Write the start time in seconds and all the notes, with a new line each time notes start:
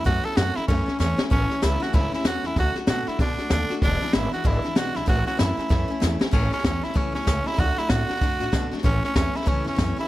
0.04 F#2 A2 E3 A3 C#4 E4 F#4, kick, snare
0.23 A3 C#4 E4 A4, muted upright bass stroke, snare
0.32 snare
0.36 F#2 E3 A3 C#4 E4 F#4, snare, hi-hat pedal
0.55 A3 C#4 E4, muted upright bass stroke, snare
0.68 F#2 A2 E3 A3 C#4 E4, kick, snare
0.86 A3 C#4 E4, muted upright bass stroke, snare
0.99 E2 E3 A3 C#4 E4, snare, hi-hat pedal
1.17 A3 C#4 E4, muted upright bass stroke, snare
1.30 A1 A2 E3 A3 C#4 E4, kick, snare
1.49 A3 C#4 E4, muted upright bass stroke, snare
1.62 C#2 E3 A3 C#4 E4, snare, hi-hat pedal
1.80 A3 C#4 E4 F#4, muted upright bass stroke, snare
1.93 C#2 A2 E3 A3 C#4 E4, kick, snare
2.12 A3 C#4 E4, muted upright bass stroke, snare
2.19 snare
2.24 E2 E3 A3 C#4 E4 F#4, snare, hi-hat pedal
2.43 E2 A3 C#4 E4, snare
2.56 D2 D3 A3 D4 F#4, kick, snare
2.75 D4 F#4, muted upright bass stroke, snare
2.79 A3
2.87 B2 D3 A3 D4 F#4, snare, hi-hat pedal
3.07 A3 D4 E4 F#4, muted upright bass stroke, snare
3.19 B2 D3 A3 D4 F#4, kick, snare
3.38 A3 D4 F#4, muted upright bass stroke, snare
3.50 D#2 D3 A3 D4 F#4, snare, hi-hat pedal
3.69 D4 F#4, muted upright bass stroke, snare
3.74 A3
3.82 E1 E2 B2 E3 G#3 D4 E4, kick, snare
4.01 E3 G#3 D4 E4, muted upright bass stroke, snare
4.07 snare
4.13 G#1 E3 G#3 D4 E4, snare, hi-hat pedal
4.32 E3 G#3 D4 E4 F#4, muted upright bass stroke, snare
4.44 G#1 E2 B2 E3 G#3 D4 E4, kick, snare
4.62 G#3 D4 E4, muted upright bass stroke, snare
4.66 E3
4.75 B1 E3 G#3 D4 E4 F#4, snare, hi-hat pedal
4.94 B1 E3 G#3 D4 E4, snare
5.06 A1 A2 E3 A3 C#4 E4 F#4, kick, snare
5.25 A3 C#4 E4 F#4, muted upright bass stroke, snare
5.37 F#2 E3 A3 C#4 E4, snare, hi-hat pedal
5.57 A3 C#4 E4, muted upright bass stroke, snare
5.69 F#2 A2 E3 A3 C#4 E4, kick, snare
5.88 A3 C#4 E4, muted upright bass stroke
6.00 E2 E3 A3 C#4 E4, snare, hi-hat pedal
6.19 A3 C#4 E4, muted upright bass stroke, snare
6.31 A1 A2 E3 A3 C#4 E4, kick, snare, crash
6.51 A3 C#4 E4, muted upright bass stroke, snare
6.58 snare
6.63 E2 E3 A3 C#4, kick, snare, hi-hat pedal
6.81 A3 C#4 E4, muted upright bass stroke, snare
6.90 snare
6.94 C#2 A2 E3 A3 C#4 E4, kick, snare
7.12 E2 A3 C#4 E4, snare
7.21 E3, snare
7.26 C#2 A3 C#4 E4, kick, snare, hi-hat pedal
7.44 A3 C#4 E4, muted upright bass stroke, snare
7.53 snare
7.57 D2 D3 A3 D4 F#4, kick, snare
7.76 A3 D4 E4 F#4, muted upright bass stroke, snare
7.89 A2 D3 A3 D4 F#4, kick, snare, hi-hat pedal
8.08 A3 D4 F#4, muted upright bass stroke, snare
8.16 snare
8.21 F#2 D3 A3 D4 F#4, kick, snare
8.40 A2 A3 D4 F#4, snare
8.52 B2 D3 A3 D4 F#4, kick, snare, hi-hat pedal
8.71 A3 D4 F#4, muted upright bass stroke, snare
8.78 snare
8.83 A1 A2 E3 A3 C#4 E4, kick, snare
9.03 C#4 E4, muted upright bass stroke, snare
9.07 A3
9.15 E2 E3 A3 C#4 E4, kick, snare, hi-hat pedal
9.34 A3 C#4 E4, muted upright bass stroke, snare
9.41 snare
9.46 C#2 A2 E3 A3 C#4 E4, kick, snare
9.64 E2 A3 C#4 E4, snare
9.73 E3, snare
9.78 F#2 A3 C#4 E4, kick, snare, hi-hat pedal
9.96 A3 C#4 E4, muted upright bass stroke, snare
10.04 snare